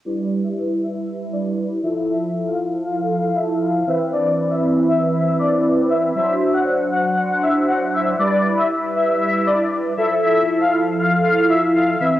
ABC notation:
X:1
M:4/4
L:1/16
Q:1/4=118
K:Em
V:1 name="Supersaw synth"
d2 z e z2 e2 e2 d z3 e z | e2 z =f z2 f2 f2 e z f z e z | d2 z e z2 e2 e2 d z3 e z | e2 z f z2 f2 f2 e z f z e z |
d2 z e z2 e2 e2 d z3 e z | e2 z =f z2 f2 f2 e z f z e z |]
V:2 name="Analog polysynth"
[G,EB]12- [G,EB]2 [=F,EA]2- | [=F,EA]12- [F,EA]2 [E,CB]2- | [E,CB]16 | [F,Dc]16 |
[G,EB]12- [G,EB]2 [=F,EA]2- | [=F,EA]12- [F,EA]2 [E,CB]2 |]